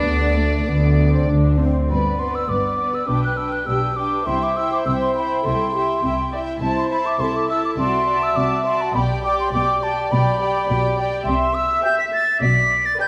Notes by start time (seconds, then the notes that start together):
Already playing: D4 D5
0.04 D2 D3 B3
0.36 A3
0.66 D2 D3 B3
1.14 C4
1.28 D2 D3 D4
1.59 C4
1.89 G1 G2 B3 B4 D5 B5
2.18 B3 B4 D5 C6
2.35 E6
2.48 G1 G2 B3 B4 D5 D6
2.78 B3 B4 D5
2.95 E6
3.07 B1 B2 D4 B4 G5 D6
3.24 F#6
3.37 D4 B4 G5 E6
3.52 F#6
3.66 B1 B2 D4 G4 B4 G5 E6
3.96 D4 B4 G5 D6
4.27 C2 C3 E4 C5 E5 G5 C6
4.43 D6
4.57 E4 E5 G5 E6
4.72 D6
4.86 C2 C3 E4 E5 G5 E6
5.02 C6
5.16 E4 E5 G5 B5
5.45 C2 C3 E4 A4 E5 G5 C6
5.74 E4 G4 E5 G5
6.03 C2 C3 E4 E5 G5
6.32 E4 D5 E5 G5
6.61 C2 C3 E4 C5 E5 A5
6.78 C6
6.91 E4 E5 A5 B5
7.06 D6
7.20 C2 C3 E4 A4 E5 A5 C6
7.36 D6
7.49 E4 E5 A5 E6
7.65 D6
7.78 C2 C3 F#4 D5 E5 A5 C6
8.07 F#4 D5 A5
8.23 E6
8.36 C2 C3 F#4 D5 A5 D6
8.65 F#4 D5 A5 C6
8.81 A5
8.95 B1 B2 G4 D5 G5 B5
9.24 G4 D5 G5 D6
9.40 C6
9.53 B1 B2 G4 D5 G5 D6
9.82 G4 D5 G5 A5
10.11 B1 B2 G4 D5 G5 B5
10.39 G4 D5 G5
10.69 B1 B2 G4 D5 G5
10.98 G4 D5 G5
11.26 C2 C3 E5 C6
11.54 E6
11.83 G4 E5 G5 G6
11.99 B6
12.13 A6
12.41 B1 B2 D5 B6
12.86 A6
12.98 G4 B4 D5 G5 G6